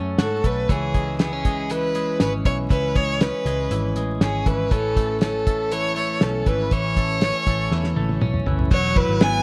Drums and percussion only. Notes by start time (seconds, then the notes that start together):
0.18 snare, closed hi-hat
0.44 kick, closed hi-hat
0.69 kick, closed hi-hat
0.94 kick, closed hi-hat
1.19 snare, closed hi-hat
1.45 kick, closed hi-hat
1.70 closed hi-hat
1.95 closed hi-hat
2.20 snare, closed hi-hat
2.45 kick, closed hi-hat
2.70 kick, closed hi-hat
2.96 kick, closed hi-hat
3.21 snare, closed hi-hat
3.45 snare, closed hi-hat
3.71 closed hi-hat
3.96 closed hi-hat
4.21 snare, closed hi-hat
4.46 kick, closed hi-hat
4.71 kick, closed hi-hat
4.96 kick, closed hi-hat
5.21 snare, closed hi-hat
5.47 kick, closed hi-hat
5.71 closed hi-hat
5.96 closed hi-hat
6.21 snare, closed hi-hat
6.46 kick, closed hi-hat
6.71 kick, closed hi-hat
6.97 kick, closed hi-hat
7.21 snare, closed hi-hat
7.46 kick, snare, closed hi-hat
7.71 snare
7.84 snare
7.96 high tom
8.09 high tom
8.21 mid tom
8.34 mid tom
8.46 floor tom
8.59 floor tom
8.71 kick, crash
8.96 kick, ride
9.21 snare, ride